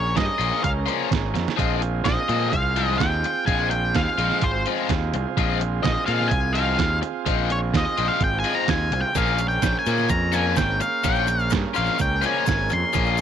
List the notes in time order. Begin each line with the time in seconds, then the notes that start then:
Already playing: A#1 C#4 G#4 A#4 C#5
0.15 G2 D#5, muted overdriven electric guitar stroke, kick, snare, closed hi-hat
0.38 A#1 F3 A#3 C#4 F4, closed hi-hat
0.63 C#2 F5, muted overdriven electric guitar stroke, kick, closed hi-hat
0.86 F3 A#3 C#4 F4, closed hi-hat
1.10 G#1, muted overdriven electric guitar stroke, kick, snare, closed hi-hat
1.34 F2, muted overdriven electric guitar stroke, snare, closed hi-hat
1.48 snare
1.56 A#1 F3 G#3 C4 F4 G#4, kick, closed hi-hat
1.81 muted overdriven electric guitar stroke, closed hi-hat
2.04 A#1 D#5, muted overdriven electric guitar stroke, kick, snare, closed hi-hat
2.29 A#2 F3 G#3 C4 F4, closed hi-hat
2.50 C2 F5, muted overdriven electric guitar stroke, kick, closed hi-hat
2.76 F3 G#3 C4 F4, closed hi-hat
2.98 D#2 G5, muted overdriven electric guitar stroke, kick, snare, closed hi-hat
3.24 muted overdriven electric guitar stroke, closed hi-hat
3.46 A#1 F3 G#3 C4 F4 G#5, kick, closed hi-hat
3.70 G5, muted overdriven electric guitar stroke, closed hi-hat
3.95 D#2 F5, muted overdriven electric guitar stroke, kick, snare, closed hi-hat
4.18 A#1 F3 G#3 C4 F4, closed hi-hat
4.32 snare
4.42 G#1 C5, muted overdriven electric guitar stroke, kick, closed hi-hat
4.66 F3 G#3 C4 F4, closed hi-hat
4.89 D#2, muted overdriven electric guitar stroke, kick, snare, closed hi-hat
5.13 C2, muted overdriven electric guitar stroke, closed hi-hat
5.37 A#1 F3 G#3 C4 F4, kick, closed hi-hat
5.61 muted overdriven electric guitar stroke, closed hi-hat
5.83 A#1 D#5, muted overdriven electric guitar stroke, kick, snare, closed hi-hat
6.06 A#2 F3 G#3 C4 F4 F5, closed hi-hat
6.20 snare
6.28 C2 G#5, muted overdriven electric guitar stroke, kick, closed hi-hat
6.53 F3 G#3 C4 F4 F5, closed hi-hat
6.77 D#2, muted overdriven electric guitar stroke, kick, snare, closed hi-hat
7.02 muted overdriven electric guitar stroke, closed hi-hat
7.26 A#1 F3 G#3 C4 F4, kick, closed hi-hat
7.50 C#5, muted overdriven electric guitar stroke, closed hi-hat
7.74 D#2 D#5, muted overdriven electric guitar stroke, kick, snare, closed hi-hat
7.97 A#1 F3 G#3 C4 F4, closed hi-hat
8.08 F5
8.20 G#1 G5, muted overdriven electric guitar stroke, kick, closed hi-hat
8.39 G#5
8.44 F3 G#3 C4 F4, closed hi-hat
8.55 A#5
8.68 D#2 G#5, muted overdriven electric guitar stroke, kick, snare, closed hi-hat
8.91 C2, muted overdriven electric guitar stroke, closed hi-hat
9.01 G5
9.14 A#1 F3 A#3 C#4 F4 F5, kick, closed hi-hat, shaker
9.27 shaker
9.38 muted overdriven electric guitar stroke, closed hi-hat, shaker
9.48 G5, shaker
9.62 A#1, muted overdriven electric guitar stroke, kick, snare, closed hi-hat, shaker
9.79 G#5
9.86 A#2 F3 A#3 C#4 F4, closed hi-hat, shaker
9.97 snare, shaker
10.09 F2 A#5, muted overdriven electric guitar stroke, kick, closed hi-hat, shaker
10.32 F3 A#3 C#4 F4 G#5, closed hi-hat, shaker
10.56 G#1 G5, muted overdriven electric guitar stroke, kick, snare, closed hi-hat, shaker
10.80 F5, muted overdriven electric guitar stroke, closed hi-hat, shaker
11.04 A#1 F3 A#3 C#4 F4 G5, kick, closed hi-hat, shaker
11.15 shaker
11.27 muted overdriven electric guitar stroke, closed hi-hat, shaker
11.39 shaker
11.50 G2, muted overdriven electric guitar stroke, kick, snare, closed hi-hat, shaker
11.74 A#1 F3 A#3 C#4 F4 F5, closed hi-hat, shaker
11.86 shaker
11.98 C#2 G5, muted overdriven electric guitar stroke, kick, closed hi-hat, shaker
12.22 F3 A#3 C#4 F4, closed hi-hat, shaker
12.26 G#5
12.46 G#1, muted overdriven electric guitar stroke, kick, snare, closed hi-hat, shaker
12.69 F2 C6, muted overdriven electric guitar stroke, closed hi-hat, shaker
12.93 A#1 F3 A#3 C#4 F4, kick, closed hi-hat, shaker
13.06 shaker
13.17 shaker